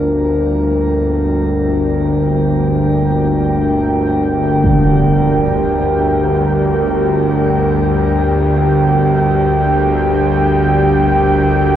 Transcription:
Already playing: G1 D2 D4 F4 G4 A#4 F5 G5
4.64 impact

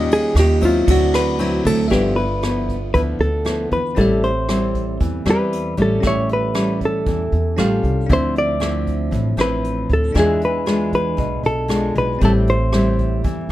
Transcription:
Already playing: D#2 D#3 G3 C#4 F4 G4 D#5
0.11 G#4, ride
0.35 D#2, cross-stick, ride
0.40 G4
0.61 F#3 C4 E4, kick, ride
0.65 F4
0.85 D2 D3 C4 E4 F#4, kick, ride
0.91 F#4 D5
1.14 B4, cross-stick, ride
1.39 F#3 C4 E4, ride
1.65 D2 A4, kick, ride
1.88 G1 G2 F3 B3 E4 G4 A4 B4 E5, kick, cross-stick, closed hi-hat
1.94 F4
2.16 B4, closed hi-hat
2.43 F3 B3 E4, cross-stick, closed hi-hat
2.69 kick, closed hi-hat
2.94 D2 D3 F3 B3 E4 B4, kick, closed hi-hat
3.19 D2 A4, closed hi-hat
3.45 F3 B3 E4, cross-stick, closed hi-hat
3.72 E2 B4, kick, closed hi-hat
3.95 A1 A2 G3 C4 E4 G4 A4, kick, closed hi-hat
3.99 A4 E5
4.23 C5, closed hi-hat
4.49 G3 C4 E4, cross-stick, closed hi-hat
4.75 kick, closed hi-hat
5.00 E2 E3, kick, closed hi-hat
5.26 E2 G3 C4 E4, cross-stick, closed hi-hat
5.30 B4
5.53 closed hi-hat
5.77 A1 G3 C#4 E4, kick, closed hi-hat
5.82 A4
6.00 A1 A2 C#4 G4, kick, cross-stick, closed hi-hat
6.05 A4 C#5 E5
6.29 closed hi-hat
6.33 B4
6.54 G3 C#4 E4, cross-stick, closed hi-hat
6.81 kick, closed hi-hat
6.85 A4
7.06 E2 E3, kick, closed hi-hat
7.32 E2, closed hi-hat
7.57 A1 G3 C#4 F4 G4 A4 F5, cross-stick, closed hi-hat
7.83 C2, kick, closed hi-hat
8.07 D2 D3 F3 C4 D4 E4, kick, closed hi-hat
8.12 C5 E5
8.36 D5, closed hi-hat
8.60 F3 C4 E4, cross-stick, closed hi-hat
8.87 kick, closed hi-hat
9.11 A1 A2, kick, closed hi-hat
9.37 A1 F3 C4 E4, cross-stick, closed hi-hat
9.41 B4
9.64 closed hi-hat
9.90 D2 A4, kick, closed hi-hat
10.12 E2 E3 G#3 D4 F4 G#5, kick, cross-stick, closed hi-hat
10.18 G#4 E5
10.41 B4, closed hi-hat
10.66 G#3 D4 F4, cross-stick, closed hi-hat
10.93 B4, kick, closed hi-hat
11.17 B1 B2, kick, closed hi-hat
11.43 B1 A4, closed hi-hat
11.68 G#3 D4 F4, cross-stick, closed hi-hat
11.95 B1 B4, kick, closed hi-hat
12.19 A1 A2 G3 C4 E4 G4, kick, closed hi-hat
12.23 A4 E5
12.47 C5, closed hi-hat
12.73 G3 C4 E4, cross-stick, closed hi-hat
12.99 kick, closed hi-hat
13.24 E2 E3, kick, closed hi-hat

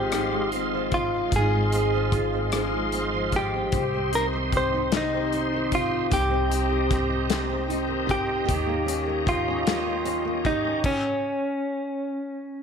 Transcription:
Already playing: G#1 G#2 F3 G#3 C4 F4 G4 D#5 F5 C6
0.12 G#2 F4, cross-stick, closed hi-hat
0.31 G#3
0.52 C4, closed hi-hat
0.74 F3
0.92 F4, kick, closed hi-hat
1.14 C4
1.32 G#1, kick, closed hi-hat
1.36 G#2 F4 G#4
1.53 G#3
1.72 C4, closed hi-hat
1.94 F3
2.12 F4, kick, cross-stick, closed hi-hat
2.34 C4
2.51 G#2 F4, cross-stick, closed hi-hat
2.74 G#3
2.92 C4, closed hi-hat
3.14 F3
3.32 F4, kick, closed hi-hat
3.36 G4
3.54 C4
3.72 C2 C3 G4 C5, kick, closed hi-hat
3.94 C4
4.13 D#4 A#4, closed hi-hat
4.33 D#3
4.52 G4, kick, closed hi-hat
4.57 C5
4.74 D#4
4.92 C3 G4, snare, closed hi-hat
4.97 D#4
5.14 C4
5.33 D#4, closed hi-hat
5.54 D#3
5.72 F4 G4, kick, closed hi-hat
5.91 D#4
6.11 C2 C3 G4 A#5, kick, closed hi-hat
6.31 C4
6.51 D#4, closed hi-hat
6.70 D#3
6.90 G4, kick, snare, closed hi-hat
7.10 D#4
7.30 C3 G4, snare, closed hi-hat
7.50 C4
7.68 D#4, closed hi-hat
7.87 D#3
8.07 G4, kick, closed hi-hat
8.11 G4
8.27 D#4
8.45 D#2 D#3 G4, kick, closed hi-hat
8.51 G4 C#5
8.66 A#3
8.86 C#4, closed hi-hat
9.06 A#3
9.26 F4 G4, kick, closed hi-hat
9.48 C#4
9.66 D#3 G4, snare, closed hi-hat
9.85 A#3
10.05 C#4, closed hi-hat
10.25 A#3
10.45 D#4 G4, kick, closed hi-hat
10.65 C#4
10.84 C#4, kick, crash

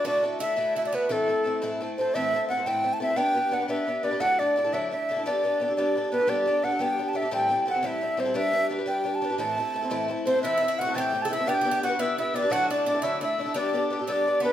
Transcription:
0.04 D3 A3 D4 E4 F#4 A4 D5
0.23 A3 E4 F#4 A4
0.39 A3 E4 F#4 A4 E5
0.56 D3 A3 E4 F#4 A4
0.76 A3 E4 F#4 A4 E5
0.85 D4 D5
0.92 A3 B3 E4 F#4 A4 B4
1.09 A2 E3 A3 C4 E4 A4
1.28 A3 C4 E4 A4
1.44 A3 C4 E4 A4
1.62 A2 E3 A3 C4 E4 A4
1.80 A3 C4 E4 A4
1.98 A3 C4 E4 A4 C5
2.15 A2 E3 A3 C4 E4 A4 E5
2.33 A3 C4 E4 A4
2.48 A3 C4 E4 A4 F#5
2.57 A3 C4 E4 A4
2.66 A2 E3 A3 C4 E4 A4 G5
2.83 A3 C4 E4 A4
2.94 A5
3.00 A3 C4 E4 A4 E5
3.08 A3 C4 E4 A4
3.16 B3 D4 G4 B4 G5
3.34 B3 D4 G4 B4
3.51 B3 D4 G4 B4 F#5
3.60 D4 G4 B4
3.68 B3 D4 G4 B4 E5
3.87 B3 D4 G4 B4
4.03 B3 D4 G4 B4 D5
4.11 D4 G4 B4
4.20 D3 F#3 A3 D4 E4 A4 F#5
4.39 A3 D4 E4 A4 D5
4.56 A3 D4 E4 A4
4.64 A3 D4 E4 A4
4.72 D3 F#3 A3 D4 E4 A4 E5
4.91 A3 D4 E4 A4 E5
5.09 A3 D4 E4 A4
5.16 A3 D4 E4 A4
5.25 G3 B3 D4 G4 A4 D5
5.43 B3 D4 G4 A4
5.60 B3 D4 G4 A4
5.68 D4 G4 A4
5.76 G3 B3 D4 G4 A4 D5
5.95 B3 D4 G4 A4
6.12 B3 D4 G4 A4 B4
6.19 D4 G4 A4
6.27 G3 B3 D4 G4 A4 D5
6.45 B3 D4 G4 A4
6.62 B3 D4 G4 A4 F#5
6.71 D4 G4 A4
6.79 G3 B3 D4 G4 A4 G5
6.98 B3 D4 G4 A4
7.09 A5
7.13 B3 D4 G4 A4 E5
7.22 D4 G4 A4
7.31 A2 E3 G3 C4 E4 A4 G5
7.49 G3 C4 E4 A4
7.66 G3 C4 E4 A4 F#5
7.74 G3 C4 E4 A4
7.82 A2 E3 G3 C4 E4 A4 E5
8.01 G3 C4 E4 A4
8.17 G3 C4 E4 A4 C5
8.25 G3 C4 E4 A4
8.34 G3 D4 G4 B4 E5
8.52 G3 D4 G4 B4
8.69 G3 D4 G4 B4
8.79 D4 G4 B4
8.86 G3 D4 G4 B4 G5
9.04 G3 D4 G4 B4
9.15 A5
9.21 G3 D4 G4 B4
9.29 D4 G4 B4
9.38 A2 E3 A3 C4 E4 A4 A5
9.57 A3 C4 E4 A4
9.74 A3 C4 E4 A4
9.82 A3 C4 E4 A4
9.90 A2 E3 A3 C4 E4 A4
10.08 A3 C4 E4 A4
10.26 A3 C4 E4 A4 C5 C6
10.34 A3 C4 E4 A4
10.42 A2 E3 A3 C4 E4 A4 E5 F#6
10.47 E6
10.58 E4
10.62 A3 C4 E4 A4
10.68 E4
10.79 A3 C4 E4 F#4 A4 F#5 F#6
10.86 A3 C4 E4 A4
10.94 A2 E3 A3 C4 E4 G4 A4 G5 A6
11.00 G6
11.13 A3 C4 E4 A4
11.22 A4 A5 A6
11.28 A3 C4 E4 A4 E5 E6
11.33 E4
11.38 A3 C4 E4 A4
11.46 B3 D4 G4 B4 G5 A6
11.54 G6
11.61 B3 G4
11.65 D4 G4 B4
11.71 G4
11.81 B3 D4 F#4 G4 B4 F#5 F#6
11.89 D4 G4 B4
11.99 B3 D4 E4 G4 B4 E5 E6
12.17 B3 D4 E4 G4 B4 E5 E6
12.34 B3 D4 G4 B4 D5 D6
12.42 D4 G4 B4
12.50 D3 F#3 A3 D4 E4 F#4 A4 F#5 A6
12.56 F#6
12.68 A3 D4 E4 A4 D5 D6
12.85 A3 D4 E4 A4 D5 D6
12.94 A3 D4 E4 A4
13.02 D3 F#3 A3 D4 E4 A4 E5 E6
13.21 A3 D4 E4 A4 E5 E6
13.38 A3 D4 E4 A4
13.46 A3 D4 E4 A4
13.54 G3 B3 D4 G4 A4 D5 E6
13.59 D6
13.73 B3 D4 G4 A4
13.90 B3 D4 G4 A4
13.99 D4 G4 A4
14.07 G3 B3 D4 G4 A4 D5 E6
14.12 D6
14.26 B3 D4 G4 A4
14.40 B3 D4 B4 B5
14.44 G4 A4

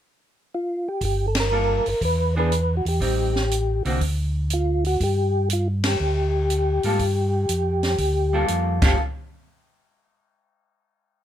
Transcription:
0.55 F4
0.89 G4
1.01 G1, kick, open hi-hat
1.05 G4
1.28 A4
1.35 snare, ride
1.40 A#4
1.51 G3 A#3 F4 A4
1.86 G1 A#4, open hi-hat
2.01 E2 B4, kick, open hi-hat
2.36 E3 B3 D4 G#4 B4
2.52 closed hi-hat
2.77 F#4
2.85 E2 G4, open hi-hat
3.00 A1 G3 C4 D#4, kick, open hi-hat
3.36 snare
3.51 closed hi-hat
3.85 C2 D3 A#3 C4 F#4, open hi-hat
4.01 D2, kick, open hi-hat
4.50 F4, closed hi-hat
4.85 F#4, open hi-hat
5.00 G2 G4, kick, open hi-hat
5.50 F4, closed hi-hat
5.84 G4, snare, ride
6.00 D2
6.50 closed hi-hat
6.83 G#2 G3 A#3 F4 A4, open hi-hat
6.99 G2, kick, open hi-hat
7.49 F2, closed hi-hat
7.83 snare, open hi-hat
7.98 D2, kick, open hi-hat
8.33 G3 A#3 F4 A4
8.48 F2, closed hi-hat
8.82 G1 G3 A#3 F4 G4 A4, kick, snare, crash

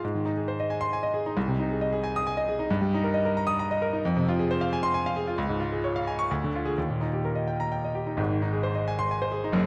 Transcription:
0.04 G#2
0.15 D#3
0.25 D#4
0.37 G#4
0.48 C5
0.60 D#5
0.70 G#5
0.81 C6
0.93 G#5
1.03 D#5
1.14 G#4
1.26 D#4
1.37 C2
1.48 C3
1.60 D#4
1.71 G#4
1.81 D#5
1.93 G#4
2.04 G#5
2.16 D#6
2.27 G#5
2.37 D#5
2.49 G#4
2.59 D#4
2.70 G2
2.81 G3
2.94 D#4
3.04 A#4
3.14 D#5
3.25 A#4
3.37 A#5
3.47 D#6
3.59 A#5
3.71 D#5
3.82 A#4
3.93 D#4
4.05 F2
4.17 C3
4.28 F4
4.39 G#4
4.51 C5
4.61 F5
4.73 G#5
4.83 C6
4.94 G#5
5.06 F5
5.16 G#4
5.27 F4
5.38 C#2
5.49 G#2
5.60 F4
5.72 G#4
5.84 C#5
5.96 F5
6.07 G#5
6.19 C#6
6.31 D2
6.44 D3
6.56 F4
6.65 G#4
6.78 D#2
6.90 A#2
7.01 D#4
7.13 G4
7.25 A#4
7.35 D#5
7.48 G5
7.60 A#5
7.72 G5
7.84 D#5
7.95 G4
8.07 D#4
8.17 G#1 G#2
8.30 D#3
8.42 D#4
8.53 G#4
8.63 C5
8.75 D#5
8.88 G#5
8.99 C6
9.11 G#5
9.22 C5
9.32 G#4
9.44 D#4
9.52 F#1 F#2

